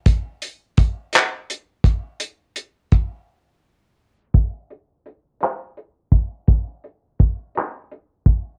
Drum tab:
HH |xxxxxx|xxx---|xxxxxx|xxxxxx|
CP |---x--|------|---x--|---x--|
BD |o-o--o|--o---|o----o|o-o--o|